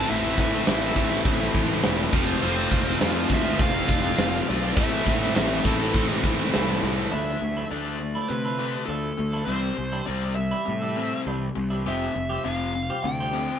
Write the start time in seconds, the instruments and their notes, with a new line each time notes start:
Already playing: distorted electric guitar A2 E3 A3, lead electric guitar A5
0.08 picked electric bass A1, overdriven electric guitar A2 E3 A3 C4 E4, lead electric guitar E5
0.24 overdriven electric guitar A3 C4 E4
0.35 picked electric bass A2, distorted electric guitar E3 A3 C4 E4, kick
0.40 lead electric guitar E5
0.52 overdriven electric guitar A3 C4 E4
0.67 picked electric bass A1, overdriven electric guitar A2 E3 A3 C4 E4, snare, open hi-hat
0.96 picked electric bass A1, overdriven electric guitar E3 A3 C4 E4, kick
1.10 overdriven electric guitar A3 C4 E4
1.24 picked electric bass A1, distorted electric guitar E3 A3 C4 E4, kick, open hi-hat
1.40 overdriven electric guitar A3 C4 E4
1.54 picked electric bass A1, overdriven electric guitar E3 A3 C4 E4, kick
1.70 overdriven electric guitar A3 C4 E4
1.82 picked electric bass E1, overdriven electric guitar A2 E3 A3, distorted electric guitar C4, snare, open hi-hat
1.86 overdriven electric guitar C4 E4
2.12 picked electric bass F1, distorted electric guitar F2 C3 F3, overdriven electric guitar F3 A3 C4 F4, kick
2.27 overdriven electric guitar A3 C4 F4
2.42 picked electric bass F1, overdriven electric guitar F3 A3 C4 F4, lead electric guitar C5, crash
2.57 overdriven electric guitar A3 C4 F4
2.70 picked electric bass F1, distorted electric guitar F3 A3 C4 F4, kick
2.86 overdriven electric guitar A3 C4 F4
3.01 picked electric bass F2, overdriven electric guitar F3 A3 C4 F4, snare, open hi-hat
3.30 picked electric bass D2, overdriven electric guitar F3 A3 C4 F4, lead electric guitar E5, kick
3.45 overdriven electric guitar A3 C4 F4
3.57 picked electric bass F1, distorted electric guitar F3 A3 C4 F4, kick, open hi-hat
3.62 lead electric guitar F5
3.74 overdriven electric guitar A3 C4 F4
3.89 picked electric bass F1, overdriven electric guitar F3 A3 C4 F4, kick
4.04 overdriven electric guitar A3 C4 F4
4.16 picked electric bass F1, overdriven electric guitar F3, distorted electric guitar A3, snare, open hi-hat
4.20 overdriven electric guitar A3 C4 F4
4.48 picked electric bass B1, overdriven electric guitar F3 A3 C4 F4, lead electric guitar D5
4.62 overdriven electric guitar A3 C4 F4
4.76 picked electric bass A1, distorted electric guitar A2 E3 A3, overdriven electric guitar A2 E3 A3 C4 E4, lead electric guitar E5, kick, open hi-hat
4.92 overdriven electric guitar A3 C4 E4
5.05 picked electric bass A2, distorted electric guitar E3 A3 C4 E4, kick
5.23 overdriven electric guitar A3 C4 E4
5.35 picked electric bass A1, overdriven electric guitar A2 E3 A3 C4 E4, lead electric guitar E5, snare, open hi-hat
5.64 picked electric bass A1, overdriven electric guitar E3 A3 C4, lead electric guitar A4, kick
5.68 overdriven electric guitar E4
5.80 overdriven electric guitar A3 C4 E4
5.92 picked electric bass A1, distorted electric guitar E3 A3 C4 E4, kick, open hi-hat
6.10 overdriven electric guitar A3 C4 E4
6.24 picked electric bass A1, overdriven electric guitar E3 A3 C4 E4, kick
6.39 overdriven electric guitar A3 C4 E4
6.52 picked electric bass C2, overdriven electric guitar A2 E3 A3 C4 E4, snare, open hi-hat
6.81 picked electric bass C2, overdriven electric guitar E3 A3 C4 E4
6.96 overdriven electric guitar A3 C4 E4
7.12 picked electric bass D2, overdriven electric guitar D3 A3 D4, clean electric guitar F3 A3 D4 E4, lead electric guitar E5
7.41 picked electric bass D2, overdriven electric guitar D3 A3
7.57 clean electric guitar F3 A3 D4 E4
7.71 picked electric bass D2, overdriven electric guitar D3 A3 D4, lead electric guitar D5, muted clean electric guitar stroke
7.86 muted clean electric guitar stroke
8.00 overdriven electric guitar D3 A3
8.15 clean electric guitar F3 A3 D4 E4
8.28 picked electric bass C3, overdriven electric guitar D3 A3, lead electric guitar B4
8.45 clean electric guitar F3 A3 D4 E4
8.59 overdriven electric guitar D3 A3 D4
8.86 picked electric bass D2, overdriven electric guitar D3 A3, clean electric guitar F3 A3 D4, lead electric guitar A4
8.90 clean electric guitar E4
9.17 picked electric bass D2, overdriven electric guitar D3 A3
9.33 clean electric guitar F3 A3 D4 E4
9.45 picked electric bass C2, overdriven electric guitar C3 G3 C4, clean electric guitar E3 G3 D4 E4, lead electric guitar C5
9.77 picked electric bass C2, overdriven electric guitar C3 G3
9.92 clean electric guitar E3 G3 D4 E4
10.06 picked electric bass C2, overdriven electric guitar C3 G3 C4, lead electric guitar D5, muted clean electric guitar stroke
10.22 muted clean electric guitar stroke
10.35 overdriven electric guitar C3 G3, lead electric guitar E5
10.51 clean electric guitar E3 G3 D4 E4
10.65 picked electric bass A2, overdriven electric guitar C3 G3
10.82 clean electric guitar E3 G3 D4 E4
10.96 overdriven electric guitar C3 G3 C4
11.26 picked electric bass C2, overdriven electric guitar C3 G3, clean electric guitar E3 G3 D4 E4
11.55 picked electric bass C2, overdriven electric guitar C3 G3
11.70 clean electric guitar E3 G3 D4 E4
11.85 picked electric bass F1, overdriven electric guitar F2 C3 F3, clean electric guitar F3 G3 C4 G4, lead electric guitar E5
12.15 picked electric bass F1, overdriven electric guitar F2 C3
12.29 clean electric guitar F3 G3 C4 G4
12.44 picked electric bass F1, overdriven electric guitar F2 C3 F3, lead electric guitar F5, muted clean electric guitar stroke
12.60 muted clean electric guitar stroke
12.75 overdriven electric guitar F2 C3
12.90 clean electric guitar F3 G3 C4 G4
13.03 picked electric bass D2, overdriven electric guitar F2 C3, lead electric guitar G5
13.20 clean electric guitar F3 G3 C4 G4
13.33 overdriven electric guitar F2 C3 F3